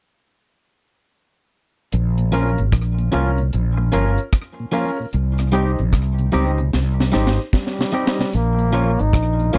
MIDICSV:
0, 0, Header, 1, 8, 480
1, 0, Start_track
1, 0, Tempo, 801068
1, 1155, Time_signature, 4, 2, 24, 8
1, 5742, End_track
2, 0, Start_track
2, 0, Title_t, "Grand piano"
2, 0, Program_c, 0, 0
2, 1389, Note_on_c, 0, 61, 79
2, 1393, Note_on_c, 0, 65, 72
2, 1397, Note_on_c, 0, 70, 90
2, 1535, Note_off_c, 0, 61, 0
2, 1537, Note_off_c, 0, 65, 0
2, 1539, Note_off_c, 0, 70, 0
2, 1866, Note_on_c, 0, 61, 87
2, 1871, Note_on_c, 0, 65, 81
2, 1874, Note_on_c, 0, 70, 91
2, 2014, Note_off_c, 0, 61, 0
2, 2016, Note_off_c, 0, 65, 0
2, 2017, Note_off_c, 0, 70, 0
2, 2347, Note_on_c, 0, 61, 94
2, 2350, Note_on_c, 0, 65, 83
2, 2355, Note_on_c, 0, 70, 101
2, 2494, Note_off_c, 0, 61, 0
2, 2495, Note_off_c, 0, 65, 0
2, 2498, Note_off_c, 0, 70, 0
2, 2830, Note_on_c, 0, 61, 88
2, 2833, Note_on_c, 0, 65, 76
2, 2836, Note_on_c, 0, 70, 92
2, 2975, Note_off_c, 0, 61, 0
2, 2976, Note_off_c, 0, 65, 0
2, 2976, Note_off_c, 0, 70, 0
2, 2985, Note_on_c, 0, 65, 21
2, 2985, Note_on_c, 0, 70, 24
2, 3021, Note_off_c, 0, 65, 0
2, 3021, Note_off_c, 0, 70, 0
2, 3309, Note_on_c, 0, 63, 84
2, 3313, Note_on_c, 0, 67, 80
2, 3317, Note_on_c, 0, 72, 85
2, 3455, Note_off_c, 0, 63, 0
2, 3457, Note_off_c, 0, 67, 0
2, 3459, Note_off_c, 0, 72, 0
2, 3788, Note_on_c, 0, 63, 89
2, 3793, Note_on_c, 0, 67, 77
2, 3794, Note_on_c, 0, 72, 94
2, 3935, Note_off_c, 0, 63, 0
2, 3937, Note_off_c, 0, 67, 0
2, 3938, Note_off_c, 0, 72, 0
2, 4268, Note_on_c, 0, 63, 83
2, 4272, Note_on_c, 0, 67, 75
2, 4277, Note_on_c, 0, 72, 95
2, 4415, Note_off_c, 0, 63, 0
2, 4417, Note_off_c, 0, 67, 0
2, 4419, Note_off_c, 0, 72, 0
2, 4746, Note_on_c, 0, 63, 86
2, 4749, Note_on_c, 0, 67, 77
2, 4755, Note_on_c, 0, 72, 90
2, 4891, Note_off_c, 0, 72, 0
2, 4893, Note_off_c, 0, 67, 0
2, 4894, Note_off_c, 0, 63, 0
2, 4900, Note_on_c, 0, 72, 23
2, 4902, Note_on_c, 0, 67, 19
2, 4939, Note_off_c, 0, 72, 0
2, 4940, Note_off_c, 0, 67, 0
2, 5222, Note_on_c, 0, 65, 80
2, 5227, Note_on_c, 0, 70, 72
2, 5231, Note_on_c, 0, 73, 84
2, 5372, Note_off_c, 0, 65, 0
2, 5375, Note_off_c, 0, 70, 0
2, 5377, Note_off_c, 0, 73, 0
2, 5706, Note_on_c, 0, 65, 83
2, 5711, Note_on_c, 0, 70, 80
2, 5714, Note_on_c, 0, 73, 89
2, 5742, Note_off_c, 0, 65, 0
2, 5742, Note_off_c, 0, 70, 0
2, 5742, Note_off_c, 0, 73, 0
2, 5742, End_track
3, 0, Start_track
3, 0, Title_t, "Clean electric guitar"
3, 0, Program_c, 1, 27
3, 1391, Note_on_c, 1, 53, 78
3, 1396, Note_on_c, 1, 58, 75
3, 1402, Note_on_c, 1, 61, 73
3, 1402, Note_on_c, 1, 65, 84
3, 1496, Note_off_c, 1, 53, 0
3, 1498, Note_off_c, 1, 58, 0
3, 1501, Note_off_c, 1, 61, 0
3, 1501, Note_off_c, 1, 65, 0
3, 1871, Note_on_c, 1, 53, 83
3, 1874, Note_on_c, 1, 58, 79
3, 1878, Note_on_c, 1, 61, 93
3, 1880, Note_on_c, 1, 65, 96
3, 1975, Note_off_c, 1, 53, 0
3, 1977, Note_off_c, 1, 58, 0
3, 1979, Note_off_c, 1, 61, 0
3, 1980, Note_off_c, 1, 65, 0
3, 2351, Note_on_c, 1, 53, 71
3, 2354, Note_on_c, 1, 58, 79
3, 2357, Note_on_c, 1, 61, 79
3, 2361, Note_on_c, 1, 65, 80
3, 2455, Note_off_c, 1, 53, 0
3, 2457, Note_off_c, 1, 58, 0
3, 2458, Note_off_c, 1, 61, 0
3, 2460, Note_off_c, 1, 65, 0
3, 2827, Note_on_c, 1, 53, 75
3, 2830, Note_on_c, 1, 58, 74
3, 2836, Note_on_c, 1, 61, 81
3, 2837, Note_on_c, 1, 65, 83
3, 2933, Note_off_c, 1, 53, 0
3, 2935, Note_off_c, 1, 58, 0
3, 2938, Note_off_c, 1, 61, 0
3, 2938, Note_off_c, 1, 65, 0
3, 3307, Note_on_c, 1, 55, 84
3, 3315, Note_on_c, 1, 60, 82
3, 3317, Note_on_c, 1, 63, 89
3, 3321, Note_on_c, 1, 67, 101
3, 3413, Note_off_c, 1, 55, 0
3, 3417, Note_off_c, 1, 60, 0
3, 3418, Note_off_c, 1, 63, 0
3, 3420, Note_off_c, 1, 67, 0
3, 3788, Note_on_c, 1, 55, 78
3, 3792, Note_on_c, 1, 60, 81
3, 3795, Note_on_c, 1, 63, 81
3, 3798, Note_on_c, 1, 67, 90
3, 3894, Note_off_c, 1, 55, 0
3, 3896, Note_off_c, 1, 60, 0
3, 3897, Note_off_c, 1, 63, 0
3, 3899, Note_off_c, 1, 67, 0
3, 4265, Note_on_c, 1, 55, 75
3, 4271, Note_on_c, 1, 60, 77
3, 4274, Note_on_c, 1, 63, 83
3, 4275, Note_on_c, 1, 67, 81
3, 4373, Note_off_c, 1, 55, 0
3, 4376, Note_off_c, 1, 60, 0
3, 4377, Note_off_c, 1, 63, 0
3, 4377, Note_off_c, 1, 67, 0
3, 4748, Note_on_c, 1, 55, 81
3, 4754, Note_on_c, 1, 60, 89
3, 4755, Note_on_c, 1, 63, 78
3, 4760, Note_on_c, 1, 67, 102
3, 4854, Note_off_c, 1, 55, 0
3, 4857, Note_off_c, 1, 60, 0
3, 4858, Note_off_c, 1, 63, 0
3, 4860, Note_off_c, 1, 67, 0
3, 5230, Note_on_c, 1, 53, 86
3, 5233, Note_on_c, 1, 58, 74
3, 5237, Note_on_c, 1, 61, 77
3, 5240, Note_on_c, 1, 65, 85
3, 5335, Note_off_c, 1, 53, 0
3, 5337, Note_off_c, 1, 58, 0
3, 5339, Note_off_c, 1, 61, 0
3, 5340, Note_off_c, 1, 65, 0
3, 5713, Note_on_c, 1, 53, 89
3, 5715, Note_on_c, 1, 58, 93
3, 5721, Note_on_c, 1, 61, 100
3, 5723, Note_on_c, 1, 65, 108
3, 5742, Note_off_c, 1, 53, 0
3, 5742, Note_off_c, 1, 58, 0
3, 5742, Note_off_c, 1, 61, 0
3, 5742, Note_off_c, 1, 65, 0
3, 5742, End_track
4, 0, Start_track
4, 0, Title_t, "Trombone"
4, 0, Program_c, 2, 57
4, 4521, Note_on_c, 2, 55, 84
4, 5002, Note_on_c, 2, 58, 99
4, 5011, Note_off_c, 2, 55, 0
4, 5398, Note_on_c, 2, 63, 94
4, 5407, Note_off_c, 2, 58, 0
4, 5720, Note_on_c, 2, 61, 81
4, 5729, Note_off_c, 2, 63, 0
4, 5742, Note_off_c, 2, 61, 0
4, 5742, End_track
5, 0, Start_track
5, 0, Title_t, "Tonewheel organ"
5, 0, Program_c, 3, 16
5, 1306, Note_on_c, 3, 46, 49
5, 1348, Note_off_c, 3, 46, 0
5, 1392, Note_on_c, 3, 53, 68
5, 1396, Note_on_c, 3, 58, 62
5, 1397, Note_on_c, 3, 61, 79
5, 1465, Note_off_c, 3, 53, 0
5, 1467, Note_off_c, 3, 58, 0
5, 1468, Note_off_c, 3, 61, 0
5, 1545, Note_on_c, 3, 46, 54
5, 1587, Note_off_c, 3, 46, 0
5, 1788, Note_on_c, 3, 46, 58
5, 1829, Note_off_c, 3, 46, 0
5, 1876, Note_on_c, 3, 53, 74
5, 1877, Note_on_c, 3, 58, 68
5, 1881, Note_on_c, 3, 61, 84
5, 1947, Note_off_c, 3, 53, 0
5, 1947, Note_off_c, 3, 58, 0
5, 1950, Note_off_c, 3, 61, 0
5, 2028, Note_on_c, 3, 46, 53
5, 2069, Note_off_c, 3, 46, 0
5, 2270, Note_on_c, 3, 46, 61
5, 2310, Note_off_c, 3, 46, 0
5, 2354, Note_on_c, 3, 53, 74
5, 2356, Note_on_c, 3, 58, 66
5, 2360, Note_on_c, 3, 61, 87
5, 2426, Note_off_c, 3, 53, 0
5, 2427, Note_off_c, 3, 58, 0
5, 2429, Note_off_c, 3, 61, 0
5, 2754, Note_on_c, 3, 46, 52
5, 2792, Note_off_c, 3, 46, 0
5, 2838, Note_on_c, 3, 53, 70
5, 2840, Note_on_c, 3, 58, 68
5, 2842, Note_on_c, 3, 61, 79
5, 2908, Note_off_c, 3, 53, 0
5, 2909, Note_off_c, 3, 58, 0
5, 2910, Note_off_c, 3, 61, 0
5, 2995, Note_on_c, 3, 46, 52
5, 3032, Note_off_c, 3, 46, 0
5, 3226, Note_on_c, 3, 48, 50
5, 3268, Note_off_c, 3, 48, 0
5, 3314, Note_on_c, 3, 55, 68
5, 3315, Note_on_c, 3, 60, 63
5, 3316, Note_on_c, 3, 63, 78
5, 3386, Note_off_c, 3, 55, 0
5, 3387, Note_off_c, 3, 60, 0
5, 3387, Note_off_c, 3, 63, 0
5, 3469, Note_on_c, 3, 48, 60
5, 3509, Note_off_c, 3, 48, 0
5, 3709, Note_on_c, 3, 48, 52
5, 3749, Note_off_c, 3, 48, 0
5, 3796, Note_on_c, 3, 55, 75
5, 3796, Note_on_c, 3, 60, 71
5, 3799, Note_on_c, 3, 63, 79
5, 3867, Note_off_c, 3, 55, 0
5, 3867, Note_off_c, 3, 60, 0
5, 3869, Note_off_c, 3, 63, 0
5, 3951, Note_on_c, 3, 48, 54
5, 3990, Note_off_c, 3, 48, 0
5, 4191, Note_on_c, 3, 48, 58
5, 4230, Note_off_c, 3, 48, 0
5, 4275, Note_on_c, 3, 55, 69
5, 4275, Note_on_c, 3, 60, 62
5, 4279, Note_on_c, 3, 63, 75
5, 4347, Note_off_c, 3, 55, 0
5, 4347, Note_off_c, 3, 60, 0
5, 4349, Note_off_c, 3, 63, 0
5, 4664, Note_on_c, 3, 48, 51
5, 4707, Note_off_c, 3, 48, 0
5, 4750, Note_on_c, 3, 55, 69
5, 4750, Note_on_c, 3, 60, 68
5, 4751, Note_on_c, 3, 63, 78
5, 4825, Note_off_c, 3, 55, 0
5, 4825, Note_off_c, 3, 60, 0
5, 4825, Note_off_c, 3, 63, 0
5, 4903, Note_on_c, 3, 48, 53
5, 4947, Note_off_c, 3, 48, 0
5, 5137, Note_on_c, 3, 46, 51
5, 5184, Note_off_c, 3, 46, 0
5, 5218, Note_on_c, 3, 53, 64
5, 5222, Note_on_c, 3, 58, 65
5, 5224, Note_on_c, 3, 61, 76
5, 5299, Note_off_c, 3, 53, 0
5, 5301, Note_off_c, 3, 58, 0
5, 5302, Note_off_c, 3, 61, 0
5, 5379, Note_on_c, 3, 46, 58
5, 5425, Note_off_c, 3, 46, 0
5, 5626, Note_on_c, 3, 46, 61
5, 5668, Note_off_c, 3, 46, 0
5, 5712, Note_on_c, 3, 53, 72
5, 5716, Note_on_c, 3, 58, 68
5, 5716, Note_on_c, 3, 61, 80
5, 5742, Note_off_c, 3, 53, 0
5, 5742, Note_off_c, 3, 58, 0
5, 5742, Note_off_c, 3, 61, 0
5, 5742, End_track
6, 0, Start_track
6, 0, Title_t, "Fretless electric bass"
6, 0, Program_c, 4, 35
6, 1159, Note_on_c, 4, 34, 98
6, 1525, Note_off_c, 4, 34, 0
6, 1554, Note_on_c, 4, 32, 75
6, 1630, Note_off_c, 4, 32, 0
6, 1636, Note_on_c, 4, 34, 88
6, 1852, Note_off_c, 4, 34, 0
6, 1881, Note_on_c, 4, 36, 81
6, 2095, Note_off_c, 4, 36, 0
6, 2120, Note_on_c, 4, 34, 94
6, 2334, Note_off_c, 4, 34, 0
6, 2360, Note_on_c, 4, 31, 81
6, 2495, Note_off_c, 4, 31, 0
6, 3079, Note_on_c, 4, 36, 92
6, 3446, Note_off_c, 4, 36, 0
6, 3472, Note_on_c, 4, 34, 76
6, 3555, Note_off_c, 4, 34, 0
6, 3555, Note_on_c, 4, 36, 94
6, 3771, Note_off_c, 4, 36, 0
6, 3799, Note_on_c, 4, 37, 81
6, 4014, Note_off_c, 4, 37, 0
6, 4037, Note_on_c, 4, 36, 83
6, 4252, Note_off_c, 4, 36, 0
6, 4280, Note_on_c, 4, 32, 90
6, 4415, Note_off_c, 4, 32, 0
6, 4999, Note_on_c, 4, 34, 92
6, 5366, Note_off_c, 4, 34, 0
6, 5393, Note_on_c, 4, 32, 80
6, 5469, Note_off_c, 4, 32, 0
6, 5476, Note_on_c, 4, 34, 94
6, 5693, Note_off_c, 4, 34, 0
6, 5718, Note_on_c, 4, 36, 83
6, 5742, Note_off_c, 4, 36, 0
6, 5742, End_track
7, 0, Start_track
7, 0, Title_t, "Muted clean electric guitar strokes"
7, 2262, Note_on_c, 9, 29, 43
7, 2322, Note_off_c, 9, 29, 0
7, 3943, Note_on_c, 9, 29, 41
7, 4003, Note_off_c, 9, 29, 0
7, 5742, End_track
8, 0, Start_track
8, 0, Title_t, "Drums"
8, 1153, Note_on_c, 9, 42, 76
8, 1213, Note_off_c, 9, 42, 0
8, 1305, Note_on_c, 9, 42, 50
8, 1364, Note_off_c, 9, 42, 0
8, 1391, Note_on_c, 9, 42, 55
8, 1451, Note_off_c, 9, 42, 0
8, 1546, Note_on_c, 9, 42, 40
8, 1606, Note_off_c, 9, 42, 0
8, 1632, Note_on_c, 9, 36, 100
8, 1633, Note_on_c, 9, 42, 77
8, 1635, Note_on_c, 9, 37, 95
8, 1692, Note_off_c, 9, 36, 0
8, 1693, Note_off_c, 9, 42, 0
8, 1695, Note_off_c, 9, 37, 0
8, 1788, Note_on_c, 9, 42, 50
8, 1848, Note_off_c, 9, 42, 0
8, 1873, Note_on_c, 9, 42, 79
8, 1933, Note_off_c, 9, 42, 0
8, 2026, Note_on_c, 9, 42, 42
8, 2086, Note_off_c, 9, 42, 0
8, 2114, Note_on_c, 9, 42, 72
8, 2174, Note_off_c, 9, 42, 0
8, 2354, Note_on_c, 9, 42, 70
8, 2414, Note_off_c, 9, 42, 0
8, 2503, Note_on_c, 9, 42, 49
8, 2563, Note_off_c, 9, 42, 0
8, 2592, Note_on_c, 9, 36, 106
8, 2592, Note_on_c, 9, 42, 93
8, 2594, Note_on_c, 9, 37, 109
8, 2652, Note_off_c, 9, 36, 0
8, 2652, Note_off_c, 9, 42, 0
8, 2654, Note_off_c, 9, 37, 0
8, 2831, Note_on_c, 9, 46, 53
8, 2891, Note_off_c, 9, 46, 0
8, 3073, Note_on_c, 9, 42, 75
8, 3133, Note_off_c, 9, 42, 0
8, 3224, Note_on_c, 9, 42, 52
8, 3229, Note_on_c, 9, 37, 64
8, 3284, Note_off_c, 9, 42, 0
8, 3289, Note_off_c, 9, 37, 0
8, 3311, Note_on_c, 9, 42, 59
8, 3371, Note_off_c, 9, 42, 0
8, 3467, Note_on_c, 9, 42, 39
8, 3527, Note_off_c, 9, 42, 0
8, 3552, Note_on_c, 9, 36, 103
8, 3553, Note_on_c, 9, 42, 79
8, 3555, Note_on_c, 9, 37, 97
8, 3611, Note_off_c, 9, 36, 0
8, 3613, Note_off_c, 9, 42, 0
8, 3615, Note_off_c, 9, 37, 0
8, 3705, Note_on_c, 9, 42, 47
8, 3765, Note_off_c, 9, 42, 0
8, 3793, Note_on_c, 9, 42, 73
8, 3853, Note_off_c, 9, 42, 0
8, 3943, Note_on_c, 9, 42, 40
8, 4003, Note_off_c, 9, 42, 0
8, 4035, Note_on_c, 9, 38, 52
8, 4095, Note_off_c, 9, 38, 0
8, 4196, Note_on_c, 9, 38, 58
8, 4256, Note_off_c, 9, 38, 0
8, 4275, Note_on_c, 9, 38, 59
8, 4335, Note_off_c, 9, 38, 0
8, 4356, Note_on_c, 9, 38, 69
8, 4416, Note_off_c, 9, 38, 0
8, 4512, Note_on_c, 9, 36, 112
8, 4517, Note_on_c, 9, 38, 72
8, 4572, Note_off_c, 9, 36, 0
8, 4577, Note_off_c, 9, 38, 0
8, 4596, Note_on_c, 9, 38, 68
8, 4656, Note_off_c, 9, 38, 0
8, 4678, Note_on_c, 9, 38, 82
8, 4738, Note_off_c, 9, 38, 0
8, 4837, Note_on_c, 9, 38, 95
8, 4897, Note_off_c, 9, 38, 0
8, 4917, Note_on_c, 9, 38, 84
8, 4977, Note_off_c, 9, 38, 0
8, 4993, Note_on_c, 9, 42, 77
8, 5053, Note_off_c, 9, 42, 0
8, 5146, Note_on_c, 9, 42, 52
8, 5206, Note_off_c, 9, 42, 0
8, 5233, Note_on_c, 9, 42, 58
8, 5293, Note_off_c, 9, 42, 0
8, 5390, Note_on_c, 9, 42, 43
8, 5449, Note_off_c, 9, 42, 0
8, 5473, Note_on_c, 9, 36, 110
8, 5475, Note_on_c, 9, 42, 83
8, 5477, Note_on_c, 9, 37, 101
8, 5533, Note_off_c, 9, 36, 0
8, 5535, Note_off_c, 9, 42, 0
8, 5537, Note_off_c, 9, 37, 0
8, 5630, Note_on_c, 9, 42, 48
8, 5690, Note_off_c, 9, 42, 0
8, 5717, Note_on_c, 9, 42, 73
8, 5742, Note_off_c, 9, 42, 0
8, 5742, End_track
0, 0, End_of_file